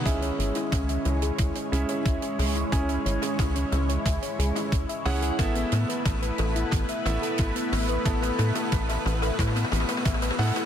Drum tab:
HH |x-x-x-x-x-x-x-x-x-x-x-x-x-x-o-x-|x-x-x-x-x-x-x-x-x-x-x-x-x-x-o-x-|x-x-x-x-x-x-x-x-x-x-x-x-x-x-o-x-|x-x-x-x-x-x-x-x-x-x-x-x-x-x-o-x-|
T2 |o-----o-o---o---o-----o-----o---|o-----o-o---o---o-----o-----o---|o---o---o---o---o---o---o---o---|o-o-o-o-o-o-o-o-ooooooooooooooo-|
BD |o-------o-------o-------o-------|o-------o-------o-------o-------|o-------o-------o-------o-------|o-------o-------o-------o-------|